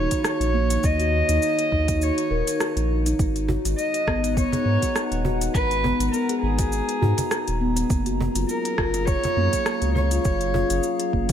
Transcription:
Already playing: ambient pad D#3 C#4 D#4 F#4 C#5 F5, steel tongue drum D#4, cello C#5
0.11 kick, closed hi-hat, shaker
0.24 cello C#5, cross-stick, shaker
0.40 sub bass A#1, closed hi-hat, shaker
0.54 steel tongue drum A#3
0.70 closed hi-hat, shaker
0.83 sub bass D#2, steel tongue drum A#3, cello D#5, kick, shaker
1.00 steel tongue drum F#4, closed hi-hat, shaker
1.29 sub bass D#2, steel tongue drum D#4, closed hi-hat, shaker
1.42 shaker
1.59 closed hi-hat, shaker
1.72 sub bass D#2, steel tongue drum D#4, kick
1.88 kick, closed hi-hat, shaker
2.02 cello C#5, shaker
2.18 closed hi-hat, shaker
2.31 sub bass D#1, steel tongue drum A#4
2.47 closed hi-hat, shaker
2.60 steel tongue drum F#4, cross-stick, shaker
2.76 sub bass A#1, steel tongue drum D#4, closed hi-hat, shaker
3.06 steel tongue drum D#4, closed hi-hat, shaker
3.18 sub bass G#1, ambient pad G#3, kick, shaker
3.36 ambient pad B4, closed hi-hat, shaker
3.48 steel tongue drum F#4, cajon bass, cajon slap
3.65 sub bass G#1, closed hi-hat, shaker
3.75 cello D#5, ambient pad A#5, shaker
3.94 closed hi-hat, shaker
4.07 sub bass G#1, steel tongue drum B3, kick, cross-stick
4.24 cajon slap, closed hi-hat, shaker
4.31 ambient pad F#5
4.37 steel tongue drum B3, cello C#5, kick, shaker
4.52 steel tongue drum G#4, cajon bass, cajon slap, closed hi-hat, shaker
4.65 sub bass G#2
4.83 steel tongue drum F#4, kick, closed hi-hat, shaker
4.96 cross-stick, shaker
5.11 sub bass D#1, closed hi-hat, shaker
5.25 steel tongue drum F#4, cajon bass
5.41 closed hi-hat, shaker
5.54 sub bass G#1, cello B4, kick, shaker
5.71 closed hi-hat, shaker
5.84 steel tongue drum B3, cajon bass, cajon slap
5.99 sub bass G#1, closed hi-hat, shaker
6.12 steel tongue drum B3, cello A#4, shaker
6.29 steel tongue drum G#4, closed hi-hat, shaker
6.41 sub bass G#1, cello G#4
6.59 steel tongue drum F#4, kick, cajon slap, closed hi-hat, shaker
6.72 shaker
6.89 closed hi-hat, shaker
7.01 sub bass G#2, steel tongue drum F#4, cajon bass
7.18 cajon bass, cajon slap, closed hi-hat, shaker
7.31 cross-stick, shaker
7.48 sub bass D#1, closed hi-hat, shaker
7.61 steel tongue drum B3
7.76 cajon slap, closed hi-hat, shaker
7.90 sub bass F#1, ambient pad F#3, steel tongue drum A#3, kick, shaker
8.03 steel tongue drum F#4, ambient pad G#4, closed hi-hat, shaker
8.17 ambient pad C#4, cajon bass, cajon slap
8.35 sub bass F#1, steel tongue drum F4, closed hi-hat, shaker
8.45 cello A#4, ambient pad F5, shaker
8.65 closed hi-hat, shaker
8.78 sub bass F#1, steel tongue drum F4, kick, cross-stick
8.94 cajon slap, closed hi-hat, shaker
9.06 cello C#5, kick, shaker
9.24 cajon bass, cajon slap, closed hi-hat, shaker
9.36 sub bass F#2, steel tongue drum A#3
9.53 kick, closed hi-hat, shaker
9.66 steel tongue drum A#3, cross-stick, shaker
9.81 sub bass C#2, steel tongue drum F#4, closed hi-hat, shaker
9.95 cello C#5, cajon bass
10.11 steel tongue drum F4, closed hi-hat, shaker
10.25 sub bass F#1, kick, shaker
10.41 closed hi-hat, shaker
10.54 steel tongue drum F4, cajon bass, cajon slap
10.70 sub bass F#1, closed hi-hat, shaker
10.83 shaker
11.00 closed hi-hat, shaker
11.13 sub bass F#1, steel tongue drum A#3, kick
11.29 closed hi-hat

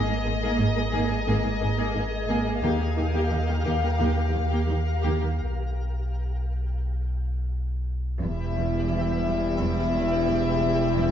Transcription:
Already playing: sub bass G#1, cello section G#2, synth texture G#4 A#4 D#5, violin section D#5
0.08 cello section G#2, viola section A#3, violin section G#4
0.25 double bass section G#1, cello section G#2 G#3, viola section A#3, violin section G#4
0.42 cello section G#2, viola section A#3, violin section G#4
0.59 double bass section G#1, cello section G#2, viola section A#3, violin section G#4
0.75 cello section G#2, viola section A#3, violin section G#4
0.92 double bass section G#1, cello section G#2, viola section A#3, violin section G#4
1.09 cello section G#2, viola section A#3, violin section G#4
1.26 double bass section G#1, cello section G#2, viola section A#3, violin section G#4
1.42 cello section G#2, viola section A#3, violin section G#4
1.60 double bass section G#1, cello section G#2, viola section A#3, violin section G#4
1.77 cello section G#2, viola section A#3, violin section G#4
1.94 double bass section G#1, cello section G#2, viola section A#3, violin section G#4
2.28 double bass section G#1, cello section G#2, viola section A#3, violin section G#4
2.45 cello section G#2, viola section A#3, violin section G#4
2.62 sub bass D#2, double bass section D#2, cello section D#3, viola section A#3, violin section G4 F5, synth texture G4 A#4 F5
2.79 cello section D#3, viola section A#3, violin section G4
2.96 double bass section D#2, cello section D#3 D#4, viola section A#3, violin section G4
3.13 cello section D#3, viola section A#3, violin section G4
3.30 double bass section D#2, cello section D#3, viola section A#3, violin section G4
3.47 cello section D#3, viola section A#3, violin section G4
3.63 double bass section D#2, cello section D#3, viola section A#3, violin section G4
3.80 cello section D#3, viola section A#3, violin section G4
3.97 double bass section D#2, cello section D#3, viola section A#3, violin section G4
4.14 cello section D#3, viola section A#3, violin section G4
4.31 double bass section D#2, cello section D#3, violin section G4
4.35 viola section A#3
4.49 cello section D#3, viola section A#3, violin section G4
4.66 double bass section D#2, cello section D#3, viola section A#3, violin section G4
5.01 double bass section D#2, cello section D#3, viola section A#3, violin section G4
5.20 cello section D#3, viola section A#3, violin section G4
5.40 sub bass B1
8.23 double bass section E1, sub bass E1, cello section E2, french horn section G3 E4, viola section G3, violin section E4 E5, synth texture G4 B4 E5
8.58 cello section E2
8.93 cello section E3
9.27 cello section E3
9.61 cello section E2
9.95 cello section E2
10.29 cello section E2
10.63 cello section E2
10.96 cello section E2

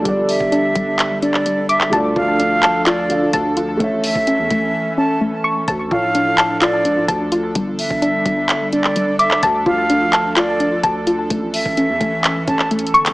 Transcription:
Already playing: analog synth pad D4 A4
0.02 808-style bass G1, grand piano G3 G4, analog synth pad G3, synth pluck G3, kick, closed hi-hat
0.06 grand piano A4 D5
0.29 flute E5, open hi-hat
0.40 808-style bass G1, kick
0.52 synth pluck D4, closed hi-hat
0.75 808-style bass G1, synth pluck G3, kick, closed hi-hat
0.99 clap, closed hi-hat
1.22 synth pluck D4, flute D5, closed hi-hat
1.34 clap
1.46 synth pluck G3, closed hi-hat
1.69 flute E5, synth pluck D6, closed hi-hat
1.81 clap
1.89 808-style bass D2, grand piano D3 A3, analog synth pad F3 D4 A4, synth pluck A5, kick, closed hi-hat
1.93 grand piano F4 D5
2.16 808-style bass D2, synth pluck F4, flute F5, kick
2.40 synth pluck D4, closed hi-hat
2.63 synth pluck A5, clap, closed hi-hat
2.86 synth pluck F4, flute D5, clap, closed hi-hat
3.08 grand piano D3 A3 F4 F5, synth pluck D4, closed hi-hat
3.33 808-style bass D2, synth pluck A5, kick, closed hi-hat
3.57 synth pluck F4, closed hi-hat
3.77 808-style bass A1, analog synth pad E3 C#4, grand piano A3 A4, synth pluck A3, kick, closed hi-hat
3.81 grand piano C#5 E5
4.04 flute E5, open hi-hat
4.15 808-style bass A1, kick
4.27 synth pluck C#4, closed hi-hat
4.39 808-style bass E2
4.51 808-style bass A1, synth pluck A3, kick, closed hi-hat
4.98 synth pluck C#4, flute A5
5.21 synth pluck A3
5.44 synth pluck C#6
5.68 808-style bass D2, analog synth pad F3 D4 A4, synth pluck A5, kick, closed hi-hat
5.91 808-style bass A2, synth pluck F4, flute F5, kick
6.15 synth pluck D4, closed hi-hat
6.38 synth pluck A5, clap, closed hi-hat
6.62 synth pluck F4, flute D5, clap, closed hi-hat
6.85 808-style bass C#2, synth pluck D4, closed hi-hat
6.97 808-style bass A2
7.08 808-style bass D2, synth pluck A5, kick, closed hi-hat
7.32 synth pluck F4, closed hi-hat
7.55 808-style bass G1, analog synth pad G3, synth pluck G3, kick, closed hi-hat
7.79 flute E5, open hi-hat
7.90 808-style bass G1, kick
8.02 synth pluck D4, closed hi-hat
8.26 808-style bass G1, synth pluck G3, kick, closed hi-hat
8.49 clap, closed hi-hat
8.73 synth pluck D4, flute D5, closed hi-hat
8.84 clap
8.96 synth pluck G3, closed hi-hat
9.19 flute E5, synth pluck D6, closed hi-hat
9.31 clap
9.43 808-style bass D2, analog synth pad F3, synth pluck A5, kick, closed hi-hat
9.66 808-style bass D2, synth pluck F4, flute F5, kick
9.90 synth pluck D4, closed hi-hat
10.13 synth pluck A5, clap, closed hi-hat
10.37 synth pluck F4, flute D5, clap, closed hi-hat
10.60 synth pluck D4, closed hi-hat
10.83 808-style bass D2, synth pluck A5, kick, closed hi-hat
11.07 synth pluck F4, closed hi-hat
11.30 808-style bass A1, analog synth pad E3 C#4, synth pluck A3, kick, closed hi-hat
11.54 flute E5, open hi-hat
11.65 808-style bass A1, kick
11.77 synth pluck C#4, closed hi-hat
11.89 808-style bass E2
12.01 808-style bass A1, synth pluck A3, kick, closed hi-hat
12.24 clap, closed hi-hat
12.47 808-style bass A1, synth pluck C#4, flute A5, kick, closed hi-hat
12.59 clap
12.71 synth pluck A3, closed hi-hat
12.79 closed hi-hat
12.87 closed hi-hat
12.94 808-style bass G1, synth pluck C#6, closed hi-hat
13.06 clap, closed hi-hat

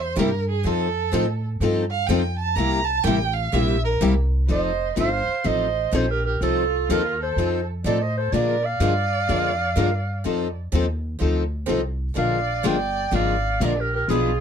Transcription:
Already playing: upright bass E2
0.00 violin C5
0.17 upright bass G2, steel-string acoustic guitar C3 G3 A#3 E4 G4, violin A#4
0.50 violin G#4
0.64 upright bass F2, steel-string acoustic guitar F3 C4 D#4 A4, violin A4
1.12 upright bass A2, steel-string acoustic guitar F3 C4 D#4 A4
1.60 upright bass G2, steel-string acoustic guitar F3 C4 D#4 A4
1.91 violin F5
2.07 upright bass F2, steel-string acoustic guitar F3 C4 D#4 A4, violin G5
2.39 violin A5
2.56 upright bass C2, steel-string acoustic guitar C3 G3 A#3 E4, violin A#5
2.60 steel-string acoustic guitar G4
2.85 violin A5
3.04 upright bass A1, steel-string acoustic guitar C3 G3 A#3 E4, violin G5
3.08 steel-string acoustic guitar G4
3.33 violin F5
3.53 upright bass A#1, steel-string acoustic guitar C3 G3 A#3 E4 G4, violin E5
3.84 violin A#4
4.01 upright bass C2, steel-string acoustic guitar C3 G3 A#3 E4 G4
4.48 upright bass F1, steel-string acoustic guitar F3 C4 D#4 A4, violin C5, clarinet D#5
4.95 upright bass G1, steel-string acoustic guitar F3 C4 D#4 A4, violin C5
5.00 clarinet F5
5.27 muted upright bass stroke
5.44 upright bass A1, steel-string acoustic guitar F3 C4 D#4 A4, violin C5, clarinet D#5
5.92 upright bass A#1, steel-string acoustic guitar F3 C4 D#4 A4, violin A4, clarinet C5
6.08 violin G4, clarinet A#4
6.26 violin G4, clarinet A#4
6.41 upright bass C2, steel-string acoustic guitar F3 C4 D#4 A4, violin F4, clarinet A4
6.89 upright bass D#2, steel-string acoustic guitar F3 C4 D#4 A4, violin F4, clarinet A#4
7.21 violin A4, clarinet C5
7.36 upright bass F2, steel-string acoustic guitar F3 C4 D#4 A4
7.84 upright bass A2, steel-string acoustic guitar F3 C4 D#4 A4, violin A4, clarinet D5
8.02 violin C5, clarinet D#5
8.17 violin A4, clarinet C5
8.32 upright bass A#2, steel-string acoustic guitar D3 F3 G#3 A#3 D4 F4 G#4 A#4, violin A#4, clarinet D5
8.64 violin D5, clarinet F5
8.80 upright bass G2, steel-string acoustic guitar D3 F3 G#3 A#3 D4 F4 G#4 A#4
9.29 upright bass F2, steel-string acoustic guitar D3 F3 G#3 A#3 D4 F4 G#4 A#4
9.76 upright bass G2, steel-string acoustic guitar D3 F3 G#3 A#3 D4 F4 G#4 A#4
10.25 upright bass F2, steel-string acoustic guitar F3 C4 D#4 A4
10.73 upright bass D#2, steel-string acoustic guitar F3 C4 D#4 A4
11.21 upright bass D2, steel-string acoustic guitar F3 C4 D#4 A4
11.68 upright bass C2, steel-string acoustic guitar F3 C4 D#4 A4
12.15 upright bass A#1, steel-string acoustic guitar D3 F3 G#3 A#3 D4 F4 G#4 A#4, violin D5, clarinet F5
12.64 upright bass G1, steel-string acoustic guitar D3 F3 G#3 A#3 D4 F4 G#4 A#4, violin D5, clarinet G5
13.12 upright bass G#1, steel-string acoustic guitar D3 F3 G#3 A#3 D4 F4 G#4 A#4, violin D5, clarinet F5
13.60 upright bass A#1, steel-string acoustic guitar D3 F3 G#3 A#3 D4 F4 G#4 A#4, violin A#4
13.65 clarinet D5
13.77 violin G4, clarinet A#4
13.93 violin G4, clarinet A#4
14.08 upright bass B1, steel-string acoustic guitar B2 F3 B3 D4 G#4 B4, violin F4, clarinet G#4

